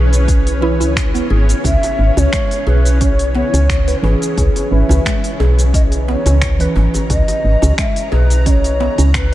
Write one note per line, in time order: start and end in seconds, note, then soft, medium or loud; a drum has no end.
0.00 0.82 B1 medium
0.00 0.58 E3 medium
0.00 0.59 C#4 medium
0.00 9.34 C#4 medium
0.00 9.34 E4 medium
0.00 0.27 G#4 medium
0.00 9.34 G#4 medium
0.00 0.58 B4 loud
0.00 0.60 B4 medium
0.00 5.26 B4 medium
0.00 9.34 C#5 medium
0.13 open hi-hat soft
0.13 cabasa medium
0.28 0.45 C#4 medium
0.28 kick loud
0.28 open hi-hat medium
0.28 cabasa medium
0.47 open hi-hat soft
0.47 cabasa soft
0.61 0.75 E3 medium
0.61 0.76 C#4 medium
0.61 0.79 E4 medium
0.61 0.76 B4 loud
0.80 1.22 C#2 loud
0.80 0.95 E4 medium
0.80 open hi-hat soft
0.80 cabasa medium
0.96 finger snap loud
0.96 kick loud
0.96 open hi-hat medium
0.96 cabasa medium
1.14 1.29 B3 medium
1.14 open hi-hat soft
1.14 cabasa soft
1.30 1.53 G#1 medium
1.30 1.48 G#4 medium
1.49 open hi-hat soft
1.49 cabasa medium
1.64 1.76 C#2 loud
1.64 1.82 C#4 medium
1.64 2.20 E5 loud
1.64 kick medium
1.64 open hi-hat medium
1.64 cabasa medium
1.83 open hi-hat soft
1.83 djembe tone medium
1.83 cabasa soft
1.99 2.10 G#1 medium
2.17 2.27 C#2 loud
2.17 2.32 C#4 medium
2.17 2.70 C#5 loud
2.17 djembe bass medium
2.17 cabasa medium
2.33 2.50 G#3 medium
2.33 finger snap medium
2.33 kick loud
2.33 open hi-hat medium
2.33 cabasa medium
2.51 open hi-hat soft
2.51 cabasa soft
2.67 3.43 B1 medium
2.67 2.99 G#4 medium
2.67 3.04 B4 loud
2.67 djembe slap medium
2.85 open hi-hat soft
2.85 cabasa medium
3.01 3.18 C#4 medium
3.01 3.36 C#5 loud
3.01 kick loud
3.01 open hi-hat medium
3.01 djembe tone medium
3.01 cabasa medium
3.19 open hi-hat soft
3.19 cabasa soft
3.35 3.45 B3 medium
3.35 4.07 C#5 loud
3.35 djembe slap soft
3.54 3.94 C#2 medium
3.54 3.69 C#4 medium
3.54 open hi-hat soft
3.54 cabasa medium
3.69 finger snap medium
3.69 kick loud
3.69 open hi-hat medium
3.69 cabasa medium
3.88 4.03 B4 medium
3.88 open hi-hat soft
3.88 cabasa soft
4.02 4.15 G#1 medium
4.02 4.67 E3 medium
4.02 4.67 C#4 medium
4.02 4.36 C#4 medium
4.02 4.72 G#4 medium
4.02 4.68 B4 medium
4.02 djembe tone medium
4.22 open hi-hat soft
4.22 cabasa medium
4.37 4.49 C#2 medium
4.37 4.55 C#4 medium
4.37 kick loud
4.37 open hi-hat medium
4.37 cabasa soft
4.56 open hi-hat soft
4.56 djembe tone medium
4.56 cabasa soft
4.71 4.83 G#1 medium
4.71 4.85 E3 medium
4.71 4.85 C#4 medium
4.71 4.86 B4 medium
4.71 5.36 E5 loud
4.88 5.00 C#2 loud
4.88 6.55 E3 medium
4.88 5.04 C#4 medium
4.88 6.56 C#4 medium
4.88 6.57 B4 medium
4.88 djembe bass loud
4.88 cabasa medium
5.05 5.23 G#3 medium
5.05 9.34 A#5 medium
5.05 finger snap medium
5.05 kick loud
5.05 open hi-hat medium
5.05 cabasa soft
5.24 open hi-hat soft
5.24 cabasa soft
5.40 6.16 B1 medium
5.40 5.72 G#4 medium
5.40 djembe slap medium
5.59 open hi-hat soft
5.59 cabasa medium
5.74 5.91 C#4 medium
5.74 5.82 D#5 loud
5.74 kick loud
5.74 open hi-hat medium
5.74 cabasa medium
5.92 open hi-hat soft
5.92 cabasa soft
6.08 6.18 B3 medium
6.08 6.72 C#5 loud
6.08 djembe slap medium
6.26 6.67 C#2 medium
6.26 6.41 C#4 medium
6.26 open hi-hat soft
6.26 djembe slap medium
6.26 cabasa medium
6.42 finger snap medium
6.42 kick loud
6.42 open hi-hat medium
6.42 cabasa soft
6.59 9.34 E3 medium
6.59 9.34 C#4 medium
6.59 6.75 B4 medium
6.59 9.34 B4 medium
6.59 open hi-hat soft
6.59 djembe tone medium
6.59 cabasa soft
6.76 6.88 G#1 medium
6.76 7.08 C#4 medium
6.76 djembe tone medium
6.76 djembe bass medium
6.94 open hi-hat soft
6.94 djembe slap soft
6.94 djembe bass medium
6.94 cabasa medium
7.10 7.22 C#2 loud
7.10 7.27 C#4 medium
7.10 7.75 D#5 loud
7.10 kick loud
7.10 open hi-hat medium
7.10 cabasa soft
7.28 open hi-hat soft
7.28 djembe tone medium
7.28 cabasa soft
7.44 7.56 G#1 medium
7.62 7.73 C#2 loud
7.62 7.77 C#4 medium
7.62 djembe bass medium
7.62 cabasa medium
7.78 7.95 G#3 medium
7.78 8.10 E5 loud
7.78 finger snap medium
7.78 kick loud
7.78 open hi-hat medium
7.78 cabasa soft
7.96 open hi-hat soft
7.96 cabasa soft
8.12 8.88 B1 medium
8.12 8.44 G#4 medium
8.12 8.48 B4 loud
8.12 djembe slap medium
8.30 open hi-hat soft
8.30 cabasa medium
8.46 8.63 C#4 medium
8.46 9.14 C#5 loud
8.46 8.51 D#5 medium
8.46 kick loud
8.46 open hi-hat medium
8.46 djembe tone medium
8.46 cabasa medium
8.64 open hi-hat soft
8.64 cabasa soft
8.80 8.91 B3 medium
8.80 djembe slap medium
8.98 9.34 C#2 loud
8.98 9.13 C#4 medium
8.98 open hi-hat soft
8.98 cabasa medium
9.14 9.34 B4 loud
9.14 finger snap loud
9.14 kick loud
9.14 open hi-hat medium
9.14 cabasa medium